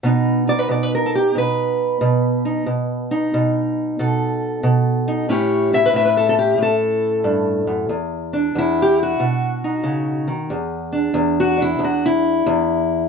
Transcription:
0.03 B2 B3 D#4
0.47 D#4 D5
0.59 B4
0.69 B2 D5
0.83 B4
0.95 A#4
1.06 A4
1.15 G4
1.35 B2 B4
2.01 B2
2.45 D#4
2.66 B2
3.11 D#4
3.34 B2
3.99 B2 A4
4.63 B2
5.08 D#4
5.29 A2 C#4 E4 G4 C#5
5.73 E4 E5
5.86 B4
5.93 A2 E5
6.05 B4
6.17 A4
6.29 A4
6.39 G4
6.58 A2
6.62 A4
7.24 G2
7.67 F#2
7.89 E2
8.33 D4
8.55 E2 E4
8.82 G4
9.03 F#4
9.20 B2
9.64 D#4
9.84 C#3
10.28 D#3
10.50 E2 G#4
10.92 D4
11.14 E2
11.40 F#4
11.57 D4
11.62 E4
11.79 E2
11.84 F#4
12.06 E4
12.46 E2

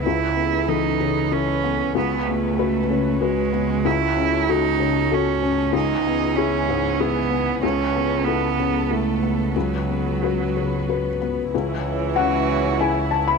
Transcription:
Already playing: C#2 B4
0.03 C#2 C#4 E4 A4
0.36 B3
0.68 E3 D#4 A4
1.01 C#3
1.32 C#4 E4 A4
1.64 B3
1.95 C#2 B3 F#4
2.26 A3 B3
2.59 F#4 B4
2.90 C#3
3.21 G#3 F#4 B4
3.53 B3
3.85 C#2 E4 A4
4.17 C#4
4.49 D#4 F#4 A4
4.80 C#3
5.12 C#4 F#4 A4
5.42 C#4
5.73 C#2 E3 B3 D#4 G#4
6.07 B3
6.36 C#4 E4 G#4
6.69 G#2
7.00 B3 E4 G#4
7.31 B3
7.62 C#2 C#4 A4
7.96 B3
8.24 B3 E4 A4
8.59 C#3
8.90 A3 E4 A4
9.23 B3
9.53 C#2 F#3 F#4 B4
9.90 B3
10.23 F#4 B4
10.57 C#3
10.88 F#4 B4
11.21 B3
11.51 C#2 E3 G#3 E4 C#5
12.16 C#4 F#4 F#5
12.80 E4 G#4 G#5
13.11 A5
13.28 B5

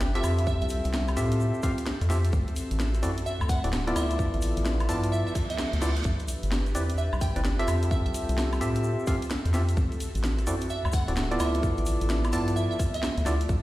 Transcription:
Already playing: G1 D4 G4 B4 E5
0.00 snare, shaker
0.15 C4 F4 G4 A4 E5, closed hi-hat, shaker
0.24 F2 C4 G4 A4, open hi-hat, high woodblock, shaker
0.38 closed hi-hat, shaker
0.47 E5, kick, shaker
0.61 C2 E5, closed hi-hat, shaker
0.69 open hi-hat, shaker
0.84 C2, closed hi-hat, shaker
0.93 snare, shaker
1.08 cross-stick, closed hi-hat, high woodblock, shaker
1.17 A2 C4 F4 G4 A4 E5, open hi-hat, shaker
1.32 closed hi-hat, shaker
1.40 shaker
1.54 shaker
1.63 C4 F4 G4 A4 F5, kick, cross-stick, open hi-hat, shaker
1.78 closed hi-hat, shaker
1.86 snare, shaker
2.01 F2, closed hi-hat, shaker
2.10 F2 C4 F4 G4 A4 E5, snare, open hi-hat, shaker
2.24 closed hi-hat, shaker
2.33 D2 F#4 E5, kick, shaker
2.48 closed hi-hat, shaker
2.56 open hi-hat, shaker
2.71 A1, closed hi-hat, shaker
2.79 snare, shaker
2.94 cross-stick, closed hi-hat, shaker
3.03 F#2 C4 E4 F#4 A4 D5, open hi-hat, shaker
3.18 closed hi-hat, shaker
3.26 E5, shaker
3.41 D2, high woodblock, shaker
3.49 F#5, kick, cross-stick, open hi-hat, shaker
3.64 D1 C4 E4 F#4 A4 D5, closed hi-hat, shaker
3.72 snare, shaker
3.87 B3 E4 F4 A4 D5, closed hi-hat, shaker
3.96 D2 F3 B3 E5, open hi-hat, high woodblock, shaker
4.11 closed hi-hat, shaker
4.19 kick, shaker
4.34 A1, closed hi-hat, shaker
4.42 open hi-hat, shaker
4.57 A1, closed hi-hat, shaker
4.65 snare, shaker
4.80 cross-stick, closed hi-hat, high woodblock, shaker
4.89 G2 B3 E4 F4 A4 D5 A5, open hi-hat, shaker
5.03 closed hi-hat, shaker
5.12 E5, reverse cymbal, shaker
5.27 E5, shaker
5.35 kick, cross-stick, open hi-hat, shaker
5.50 E5, closed hi-hat, shaker
5.58 snare, shaker
5.73 D2, closed hi-hat, shaker
5.82 D2 B3 E4 F4 A4 D5, snare, open hi-hat, shaker
5.97 closed hi-hat, shaker
6.05 C2 D4 G4 B4, kick, shaker
6.19 closed hi-hat, shaker
6.28 open hi-hat, shaker
6.43 G1, closed hi-hat, shaker
6.52 snare, shaker
6.66 cross-stick, closed hi-hat, shaker
6.75 E2 C4 E4 G4 B4 D5, open hi-hat, shaker
6.90 closed hi-hat, shaker
6.98 E5, shaker
7.13 C2, high woodblock, shaker
7.21 G5, kick, cross-stick, open hi-hat, shaker
7.36 G1 C4 E4 G4 B4 D5, closed hi-hat, shaker
7.45 snare, shaker
7.59 C4 F4 G4 A4 E5, closed hi-hat, shaker
7.68 F2 C4 A4 E5, open hi-hat, high woodblock, shaker
7.83 closed hi-hat, shaker
7.91 E5, kick, shaker
8.06 C2 E5, closed hi-hat, shaker
8.14 open hi-hat, shaker
8.29 C2, closed hi-hat, shaker
8.38 snare, shaker
8.53 cross-stick, closed hi-hat, high woodblock, shaker
8.61 A2 C4 F4 G4 A4 E5, open hi-hat, shaker
8.75 closed hi-hat, shaker
8.84 shaker
8.99 shaker
9.07 C4 F4 G4 A4 F5, kick, cross-stick, open hi-hat, shaker
9.22 closed hi-hat, shaker
9.30 snare, shaker
9.45 F2, closed hi-hat, shaker
9.54 F2 C4 F4 G4 A4 E5, snare, open hi-hat, shaker
9.69 closed hi-hat, shaker
9.77 D2 F#4, kick, shaker
9.92 closed hi-hat, shaker
10.00 open hi-hat, shaker
10.15 A1, closed hi-hat, shaker
10.24 snare, shaker
10.39 cross-stick, closed hi-hat, shaker
10.47 F#2 C4 E4 F#4 A4 D5, open hi-hat, shaker
10.61 closed hi-hat, shaker
10.69 E5, shaker
10.85 D2, high woodblock, shaker
10.92 F#5, kick, cross-stick, open hi-hat, shaker
11.08 D1 C4 E4 F#4 A4 D5, closed hi-hat, shaker
11.16 snare, shaker
11.31 B3 E4 F4 A4 D5, closed hi-hat, shaker
11.40 D2 F3 B3 E5, open hi-hat, high woodblock, shaker
11.54 closed hi-hat, shaker
11.63 kick, shaker
11.77 A1, closed hi-hat, shaker
11.86 open hi-hat, shaker
12.01 A1, closed hi-hat, shaker
12.09 snare, shaker
12.24 cross-stick, closed hi-hat, high woodblock, shaker
12.33 G2 B3 E4 F4 A4 D5 A5, open hi-hat, shaker
12.48 closed hi-hat, shaker
12.56 E5, shaker
12.71 E5, shaker
12.79 kick, cross-stick, open hi-hat, shaker
12.94 E5, closed hi-hat, shaker
13.03 snare, shaker
13.18 D2, closed hi-hat, shaker
13.26 D2 B3 E4 F4 A4 D5, snare, open hi-hat, shaker
13.41 closed hi-hat, shaker
13.49 C2 D4 G4 B4, kick, shaker

